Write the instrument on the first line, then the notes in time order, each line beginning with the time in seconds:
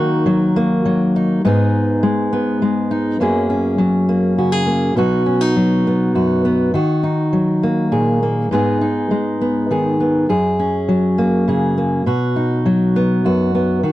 steel-string acoustic guitar
Already playing: D#3 A#3 D#4 F#4
0.26 F#3
0.56 A#3
0.85 F#3
1.16 D#4
1.45 G#2 B3 D#4 G#4
2.03 G#3
2.33 B3
2.62 G#3
2.91 D#4
3.20 F#2 F#3 A#3 C#4 G#4
3.50 C#4
3.78 F#3
4.09 A#3
4.38 C#3 F#4
4.52 G#4
4.67 A#3
4.95 B2 F#3 B3 D#4 F#4
5.26 C#4
5.41 D#4
5.56 F#3
5.87 B3
6.15 F#2 F#4
6.45 B3
6.74 D#3 F#4
7.03 D#4
7.33 F#3
7.63 A#3
7.92 A#2 G#4
8.23 A#3
8.51 G#2 G#3 B3 D#4 G#4
8.81 D#4
9.11 G#3
9.41 B3
9.71 D#3 G#4
10.00 B3
10.29 F#2 G#4
10.59 C#4
10.88 F#3
11.18 A#3
11.48 C#3 G#4
11.78 A#3
12.06 B2 F#4
12.36 D#4
12.66 F#3
12.96 B3
13.25 F#2 F#4
13.55 B3
13.83 D#3 F#4